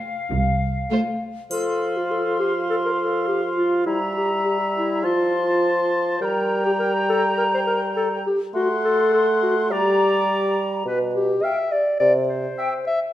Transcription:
Already playing: F5
0.31 C2
0.90 A3 F4 C5
1.51 F3 A4 F5 C6, triangle
1.97 F4
2.11 A4
2.40 G4
2.70 A4
2.85 A#4
3.00 A4
3.28 G4
3.57 F4
3.86 G3 E4 E5 A#5
4.16 G4
4.45 G4
4.76 E4
5.03 F3 F4 A5 C6
6.15 C5
6.21 G3 A#4 G5 A#5
6.66 G4
6.79 A#4
7.09 A4
7.38 A#4
7.54 C5
7.67 A#4
7.96 A4
8.27 G4
8.54 A3 F#4 F#5 C6
8.85 A4
9.14 A4
9.43 F#4
9.71 G3 G4 D5 A#5
10.85 B2 B4
11.16 G4
11.43 E5 F5 G5
11.72 D5
12.00 C3 D5
12.28 C5
12.57 E5 G5
12.87 E5

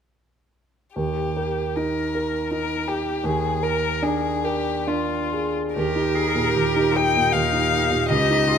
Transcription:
0.95 D#2 G4
1.37 A#4
1.76 D#4 A#4
2.15 A#4
2.51 D#4 A#4
2.87 G4
3.24 D#2 G#4
3.63 A#4
4.02 D4 G#4
4.44 G4 A#4
4.87 D4 F4
5.33 G#4
5.75 D#2 G4 A#4
5.96 D#4
6.15 G4 G#4
6.35 A#2
6.53 D#2 G4
6.76 D#4
6.94 D#4 G4 G5
7.16 A#2
7.32 D#2 F5
7.52 D#4
7.73 G4
7.91 A#2
8.08 C#2 G4 D#5
8.30 D#4
8.47 F4 G4

